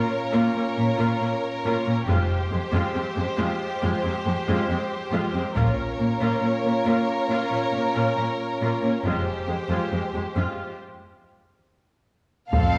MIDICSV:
0, 0, Header, 1, 8, 480
1, 0, Start_track
1, 0, Tempo, 870827
1, 1149, Time_signature, 4, 2, 24, 8
1, 7045, End_track
2, 0, Start_track
2, 0, Title_t, "Violin section"
2, 0, Program_c, 0, 48
2, 6905, Note_on_c, 0, 77, 69
2, 7045, Note_off_c, 0, 77, 0
2, 7045, End_track
3, 0, Start_track
3, 0, Title_t, "Violin section"
3, 0, Program_c, 1, 48
3, 0, Note_on_c, 1, 70, 55
3, 0, Note_on_c, 1, 73, 55
3, 1124, Note_off_c, 1, 70, 0
3, 1124, Note_off_c, 1, 73, 0
3, 1142, Note_on_c, 1, 67, 53
3, 1142, Note_on_c, 1, 72, 57
3, 3043, Note_off_c, 1, 67, 0
3, 3065, Note_off_c, 1, 72, 0
3, 3065, Note_on_c, 1, 73, 52
3, 3066, Note_on_c, 1, 70, 55
3, 4982, Note_on_c, 1, 72, 41
3, 4984, Note_on_c, 1, 67, 42
3, 4985, Note_off_c, 1, 73, 0
3, 4986, Note_off_c, 1, 70, 0
3, 5944, Note_off_c, 1, 72, 0
3, 5945, Note_off_c, 1, 67, 0
3, 6901, Note_on_c, 1, 69, 43
3, 7045, Note_off_c, 1, 69, 0
3, 7045, End_track
4, 0, Start_track
4, 0, Title_t, "French horn section"
4, 0, Program_c, 2, 60
4, 0, Note_on_c, 2, 61, 58
4, 0, Note_on_c, 2, 65, 55
4, 1127, Note_off_c, 2, 61, 0
4, 1127, Note_off_c, 2, 65, 0
4, 1141, Note_on_c, 2, 67, 55
4, 1143, Note_on_c, 2, 56, 51
4, 2972, Note_off_c, 2, 56, 0
4, 2972, Note_off_c, 2, 67, 0
4, 3066, Note_on_c, 2, 65, 56
4, 3067, Note_on_c, 2, 61, 51
4, 4964, Note_off_c, 2, 61, 0
4, 4964, Note_off_c, 2, 65, 0
4, 4982, Note_on_c, 2, 56, 43
4, 4984, Note_on_c, 2, 67, 41
4, 5925, Note_off_c, 2, 56, 0
4, 5926, Note_off_c, 2, 67, 0
4, 6907, Note_on_c, 2, 65, 48
4, 6908, Note_on_c, 2, 53, 44
4, 7045, Note_off_c, 2, 53, 0
4, 7045, Note_off_c, 2, 65, 0
4, 7045, End_track
5, 0, Start_track
5, 0, Title_t, "Viola section"
5, 0, Program_c, 3, 48
5, 0, Note_on_c, 3, 58, 58
5, 0, Note_on_c, 3, 65, 61
5, 58, Note_off_c, 3, 58, 0
5, 59, Note_off_c, 3, 65, 0
5, 176, Note_on_c, 3, 65, 59
5, 177, Note_on_c, 3, 58, 63
5, 294, Note_off_c, 3, 58, 0
5, 294, Note_off_c, 3, 65, 0
5, 302, Note_on_c, 3, 58, 53
5, 302, Note_on_c, 3, 61, 55
5, 346, Note_off_c, 3, 58, 0
5, 346, Note_off_c, 3, 61, 0
5, 417, Note_on_c, 3, 58, 42
5, 419, Note_off_c, 3, 58, 0
5, 419, Note_on_c, 3, 58, 44
5, 464, Note_off_c, 3, 58, 0
5, 530, Note_on_c, 3, 65, 59
5, 533, Note_on_c, 3, 58, 59
5, 650, Note_off_c, 3, 65, 0
5, 652, Note_off_c, 3, 58, 0
5, 660, Note_on_c, 3, 58, 52
5, 662, Note_on_c, 3, 61, 50
5, 704, Note_off_c, 3, 58, 0
5, 706, Note_off_c, 3, 61, 0
5, 906, Note_on_c, 3, 58, 61
5, 907, Note_on_c, 3, 65, 55
5, 1019, Note_off_c, 3, 58, 0
5, 1019, Note_off_c, 3, 65, 0
5, 1032, Note_on_c, 3, 61, 44
5, 1033, Note_on_c, 3, 58, 43
5, 1076, Note_off_c, 3, 61, 0
5, 1077, Note_off_c, 3, 58, 0
5, 1149, Note_on_c, 3, 56, 57
5, 1149, Note_on_c, 3, 65, 54
5, 1260, Note_off_c, 3, 56, 0
5, 1260, Note_off_c, 3, 65, 0
5, 1387, Note_on_c, 3, 56, 38
5, 1388, Note_off_c, 3, 56, 0
5, 1388, Note_on_c, 3, 56, 41
5, 1432, Note_off_c, 3, 56, 0
5, 1501, Note_on_c, 3, 65, 57
5, 1503, Note_on_c, 3, 56, 63
5, 1613, Note_off_c, 3, 56, 0
5, 1616, Note_off_c, 3, 65, 0
5, 1619, Note_on_c, 3, 56, 36
5, 1620, Note_on_c, 3, 60, 40
5, 1664, Note_off_c, 3, 56, 0
5, 1664, Note_off_c, 3, 60, 0
5, 1738, Note_on_c, 3, 56, 41
5, 1742, Note_off_c, 3, 56, 0
5, 1742, Note_on_c, 3, 56, 37
5, 1786, Note_off_c, 3, 56, 0
5, 1858, Note_on_c, 3, 56, 58
5, 1859, Note_on_c, 3, 65, 55
5, 1975, Note_off_c, 3, 56, 0
5, 1975, Note_off_c, 3, 65, 0
5, 2101, Note_on_c, 3, 65, 52
5, 2102, Note_on_c, 3, 56, 57
5, 2216, Note_off_c, 3, 65, 0
5, 2217, Note_off_c, 3, 56, 0
5, 2223, Note_on_c, 3, 60, 54
5, 2224, Note_on_c, 3, 56, 54
5, 2267, Note_off_c, 3, 60, 0
5, 2268, Note_off_c, 3, 56, 0
5, 2340, Note_on_c, 3, 56, 38
5, 2341, Note_off_c, 3, 56, 0
5, 2341, Note_on_c, 3, 56, 35
5, 2385, Note_off_c, 3, 56, 0
5, 2464, Note_on_c, 3, 56, 59
5, 2466, Note_on_c, 3, 65, 52
5, 2577, Note_off_c, 3, 56, 0
5, 2579, Note_off_c, 3, 65, 0
5, 2585, Note_on_c, 3, 60, 49
5, 2586, Note_on_c, 3, 56, 51
5, 2629, Note_off_c, 3, 60, 0
5, 2630, Note_off_c, 3, 56, 0
5, 2818, Note_on_c, 3, 56, 49
5, 2820, Note_on_c, 3, 65, 51
5, 2934, Note_off_c, 3, 56, 0
5, 2935, Note_off_c, 3, 65, 0
5, 2943, Note_on_c, 3, 56, 43
5, 2943, Note_on_c, 3, 60, 41
5, 2987, Note_off_c, 3, 60, 0
5, 2988, Note_off_c, 3, 56, 0
5, 3058, Note_on_c, 3, 58, 55
5, 3060, Note_on_c, 3, 65, 59
5, 3174, Note_off_c, 3, 58, 0
5, 3175, Note_off_c, 3, 65, 0
5, 3302, Note_on_c, 3, 58, 42
5, 3303, Note_off_c, 3, 58, 0
5, 3303, Note_on_c, 3, 58, 44
5, 3347, Note_off_c, 3, 58, 0
5, 3425, Note_on_c, 3, 58, 59
5, 3425, Note_on_c, 3, 65, 58
5, 3538, Note_off_c, 3, 58, 0
5, 3538, Note_off_c, 3, 65, 0
5, 3542, Note_on_c, 3, 61, 30
5, 3544, Note_on_c, 3, 58, 32
5, 3586, Note_off_c, 3, 61, 0
5, 3588, Note_off_c, 3, 58, 0
5, 3664, Note_on_c, 3, 58, 40
5, 3668, Note_off_c, 3, 58, 0
5, 3668, Note_on_c, 3, 58, 42
5, 3712, Note_off_c, 3, 58, 0
5, 3780, Note_on_c, 3, 65, 49
5, 3781, Note_on_c, 3, 58, 46
5, 3895, Note_off_c, 3, 65, 0
5, 3896, Note_off_c, 3, 58, 0
5, 4024, Note_on_c, 3, 65, 52
5, 4025, Note_on_c, 3, 58, 42
5, 4137, Note_off_c, 3, 65, 0
5, 4138, Note_off_c, 3, 58, 0
5, 4147, Note_on_c, 3, 58, 38
5, 4148, Note_on_c, 3, 61, 39
5, 4191, Note_off_c, 3, 58, 0
5, 4192, Note_off_c, 3, 61, 0
5, 4268, Note_on_c, 3, 58, 33
5, 4269, Note_off_c, 3, 58, 0
5, 4269, Note_on_c, 3, 58, 36
5, 4313, Note_off_c, 3, 58, 0
5, 4383, Note_on_c, 3, 65, 41
5, 4386, Note_on_c, 3, 58, 51
5, 4496, Note_off_c, 3, 65, 0
5, 4498, Note_off_c, 3, 58, 0
5, 4506, Note_on_c, 3, 58, 46
5, 4508, Note_on_c, 3, 61, 44
5, 4550, Note_off_c, 3, 58, 0
5, 4552, Note_off_c, 3, 61, 0
5, 4745, Note_on_c, 3, 58, 41
5, 4745, Note_on_c, 3, 65, 40
5, 4858, Note_off_c, 3, 58, 0
5, 4858, Note_off_c, 3, 65, 0
5, 4869, Note_on_c, 3, 58, 39
5, 4869, Note_on_c, 3, 61, 38
5, 4913, Note_off_c, 3, 58, 0
5, 4913, Note_off_c, 3, 61, 0
5, 4988, Note_on_c, 3, 56, 45
5, 4988, Note_on_c, 3, 65, 48
5, 5099, Note_off_c, 3, 56, 0
5, 5099, Note_off_c, 3, 65, 0
5, 5228, Note_on_c, 3, 56, 34
5, 5230, Note_off_c, 3, 56, 0
5, 5230, Note_on_c, 3, 56, 35
5, 5274, Note_off_c, 3, 56, 0
5, 5344, Note_on_c, 3, 65, 42
5, 5345, Note_on_c, 3, 56, 40
5, 5457, Note_off_c, 3, 56, 0
5, 5457, Note_off_c, 3, 65, 0
5, 5471, Note_on_c, 3, 60, 29
5, 5474, Note_on_c, 3, 56, 28
5, 5516, Note_off_c, 3, 60, 0
5, 5518, Note_off_c, 3, 56, 0
5, 5589, Note_on_c, 3, 56, 33
5, 5590, Note_off_c, 3, 56, 0
5, 5590, Note_on_c, 3, 56, 33
5, 5634, Note_off_c, 3, 56, 0
5, 5710, Note_on_c, 3, 56, 42
5, 5710, Note_on_c, 3, 65, 49
5, 5820, Note_off_c, 3, 56, 0
5, 5820, Note_off_c, 3, 65, 0
5, 6898, Note_on_c, 3, 60, 44
5, 6901, Note_on_c, 3, 69, 48
5, 7045, Note_off_c, 3, 60, 0
5, 7045, Note_off_c, 3, 69, 0
5, 7045, End_track
6, 0, Start_track
6, 0, Title_t, "Cello section"
6, 0, Program_c, 4, 48
6, 187, Note_on_c, 4, 46, 54
6, 231, Note_off_c, 4, 46, 0
6, 305, Note_on_c, 4, 46, 45
6, 349, Note_off_c, 4, 46, 0
6, 427, Note_on_c, 4, 46, 47
6, 471, Note_off_c, 4, 46, 0
6, 545, Note_on_c, 4, 46, 57
6, 589, Note_off_c, 4, 46, 0
6, 667, Note_on_c, 4, 46, 39
6, 711, Note_off_c, 4, 46, 0
6, 907, Note_on_c, 4, 46, 53
6, 951, Note_off_c, 4, 46, 0
6, 1024, Note_on_c, 4, 46, 42
6, 1069, Note_off_c, 4, 46, 0
6, 1146, Note_on_c, 4, 41, 53
6, 1191, Note_off_c, 4, 41, 0
6, 1390, Note_on_c, 4, 41, 42
6, 1434, Note_off_c, 4, 41, 0
6, 1506, Note_on_c, 4, 41, 67
6, 1551, Note_off_c, 4, 41, 0
6, 1625, Note_on_c, 4, 41, 45
6, 1669, Note_off_c, 4, 41, 0
6, 1747, Note_on_c, 4, 41, 47
6, 1792, Note_off_c, 4, 41, 0
6, 1869, Note_on_c, 4, 41, 60
6, 1913, Note_off_c, 4, 41, 0
6, 2108, Note_on_c, 4, 41, 52
6, 2152, Note_off_c, 4, 41, 0
6, 2227, Note_on_c, 4, 41, 42
6, 2271, Note_off_c, 4, 41, 0
6, 2352, Note_on_c, 4, 41, 44
6, 2396, Note_off_c, 4, 41, 0
6, 2471, Note_on_c, 4, 41, 55
6, 2515, Note_off_c, 4, 41, 0
6, 2588, Note_on_c, 4, 41, 42
6, 2632, Note_off_c, 4, 41, 0
6, 2823, Note_on_c, 4, 41, 52
6, 2868, Note_off_c, 4, 41, 0
6, 2945, Note_on_c, 4, 41, 41
6, 2989, Note_off_c, 4, 41, 0
6, 3061, Note_on_c, 4, 46, 59
6, 3105, Note_off_c, 4, 46, 0
6, 3302, Note_on_c, 4, 46, 39
6, 3346, Note_off_c, 4, 46, 0
6, 3420, Note_on_c, 4, 46, 61
6, 3464, Note_off_c, 4, 46, 0
6, 3537, Note_on_c, 4, 46, 40
6, 3581, Note_off_c, 4, 46, 0
6, 3661, Note_on_c, 4, 46, 39
6, 3705, Note_off_c, 4, 46, 0
6, 3780, Note_on_c, 4, 46, 56
6, 3824, Note_off_c, 4, 46, 0
6, 4019, Note_on_c, 4, 46, 44
6, 4063, Note_off_c, 4, 46, 0
6, 4143, Note_on_c, 4, 46, 35
6, 4187, Note_off_c, 4, 46, 0
6, 4264, Note_on_c, 4, 46, 38
6, 4309, Note_off_c, 4, 46, 0
6, 4385, Note_on_c, 4, 46, 48
6, 4429, Note_off_c, 4, 46, 0
6, 4504, Note_on_c, 4, 46, 34
6, 4548, Note_off_c, 4, 46, 0
6, 4744, Note_on_c, 4, 46, 43
6, 4788, Note_off_c, 4, 46, 0
6, 4862, Note_on_c, 4, 46, 31
6, 4906, Note_off_c, 4, 46, 0
6, 4985, Note_on_c, 4, 41, 43
6, 5029, Note_off_c, 4, 41, 0
6, 5223, Note_on_c, 4, 41, 27
6, 5267, Note_off_c, 4, 41, 0
6, 5343, Note_on_c, 4, 41, 52
6, 5388, Note_off_c, 4, 41, 0
6, 5465, Note_on_c, 4, 41, 32
6, 5509, Note_off_c, 4, 41, 0
6, 5589, Note_on_c, 4, 41, 31
6, 5633, Note_off_c, 4, 41, 0
6, 5712, Note_on_c, 4, 41, 47
6, 5756, Note_off_c, 4, 41, 0
6, 6901, Note_on_c, 4, 41, 52
6, 7045, Note_off_c, 4, 41, 0
6, 7045, End_track
7, 0, Start_track
7, 0, Title_t, "Double bass section"
7, 0, Program_c, 5, 48
7, 1144, Note_on_c, 5, 29, 54
7, 1258, Note_off_c, 5, 29, 0
7, 3066, Note_on_c, 5, 34, 59
7, 3178, Note_off_c, 5, 34, 0
7, 4984, Note_on_c, 5, 29, 42
7, 5097, Note_off_c, 5, 29, 0
7, 6902, Note_on_c, 5, 29, 46
7, 7045, Note_off_c, 5, 29, 0
7, 7045, End_track
8, 0, Start_track
8, 0, Title_t, "Taiko and cinematic ensemble drums"
8, 3067, Note_on_c, 9, 41, 48
8, 3122, Note_off_c, 9, 41, 0
8, 6905, Note_on_c, 9, 41, 57
8, 6961, Note_off_c, 9, 41, 0
8, 7045, End_track
0, 0, End_of_file